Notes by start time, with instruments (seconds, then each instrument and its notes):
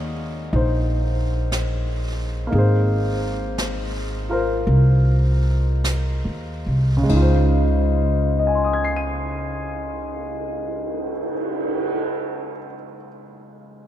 Already playing: upright bass D#2, grand piano A#3 D#4 G#4 C#5 F#5
0.53 upright bass A#1, grand piano D#4 C5, brush sweep
1.52 brush sweep, snare, hi-hat pedal
2.47 grand piano A#3 D#4
2.52 upright bass G#1, grand piano G#4, brush sweep
2.58 grand piano C5
3.58 brush sweep, snare, hi-hat pedal
4.29 grand piano F4 A#4 C5
4.67 upright bass C2, brush sweep
5.84 brush sweep, snare, hi-hat pedal
6.25 upright bass D#2
6.67 upright bass C2
6.97 grand piano C#3
7.03 grand piano G#3
7.09 upright bass C#2, grand piano D#4, kick, ride
7.16 grand piano F4
7.22 grand piano C5
7.97 cymbal swell
8.39 grand piano D#5
8.47 grand piano G#5
8.55 grand piano C6
8.64 grand piano D#6
8.73 grand piano G#6
8.84 grand piano C7
8.96 grand piano D#7